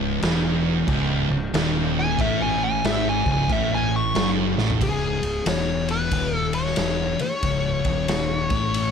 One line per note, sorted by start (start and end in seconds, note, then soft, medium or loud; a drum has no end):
0.00 0.19 C#1 loud
0.00 0.22 C#2 loud
0.22 0.84 E1 medium
0.22 0.88 E2 loud
0.22 snare loud
0.22 crash medium
0.88 1.27 C#1 medium
0.88 1.29 C#2 loud
0.88 kick loud
0.88 crash medium
1.30 1.52 C#1 medium
1.30 1.49 C#2 medium
1.53 2.15 D#1 medium
1.53 2.18 D#2 loud
1.53 snare loud
1.53 crash medium
1.99 2.19 G#5 loud
2.19 2.80 A1 medium
2.19 2.84 A2 loud
2.19 2.41 E5 loud
2.19 kick loud
2.19 crash medium
2.40 2.62 G#5 medium
2.64 2.85 G#5 loud
2.84 3.23 G#1 medium
2.84 3.25 G#2 loud
2.84 3.06 E5 medium
2.84 snare loud
2.84 crash medium
3.09 3.29 G#5 medium
3.26 3.48 C#1 loud
3.26 3.49 C#2 loud
3.26 kick loud
3.32 3.51 G#5 medium
3.49 4.11 A1 medium
3.49 4.14 A2 loud
3.49 3.72 E5 medium
3.49 kick loud
3.49 crash medium
3.74 3.94 G#5 medium
3.96 4.29 C#6 medium
4.15 4.55 F#1 loud
4.15 4.56 F#2 loud
4.15 snare loud
4.15 crash medium
4.57 4.79 A1 loud
4.57 4.80 A2 loud
4.57 snare medium
4.70 floor tom medium
4.81 5.20 C#1 medium
4.81 5.21 C#2 loud
4.81 5.43 G#4 medium
4.81 kick loud
4.81 ride loud
5.22 5.45 C#1 medium
5.22 5.41 C#2 medium
5.22 ride medium
5.46 6.08 E1 medium
5.46 6.11 E2 loud
5.46 5.86 C#5 loud
5.46 snare loud
5.46 ride loud
5.89 6.37 B4 loud
5.89 ride medium
6.11 6.74 D#1 medium
6.11 6.77 D#2 loud
6.11 kick loud
6.11 ride loud
6.37 6.51 A4 loud
6.53 7.21 C#5 loud
6.53 ride medium
6.66 snare soft
6.76 7.17 E1 medium
6.76 7.18 E2 loud
6.76 snare loud
6.76 ride loud
7.19 8.91 C#5 medium
7.19 muted fingered electric bass stroke soft
7.19 muted distorted electric guitar stroke medium
7.19 ride medium
7.43 7.82 C#1 loud
7.43 7.84 C#2 loud
7.43 kick loud
7.43 ride medium
7.85 8.47 D#1 loud
7.85 8.50 D#2 loud
7.85 kick loud
7.85 ride medium
8.08 snare loud
8.08 ride medium
8.50 8.91 A1 medium
8.50 8.91 A2 loud
8.50 kick loud
8.50 ride medium
8.74 ride medium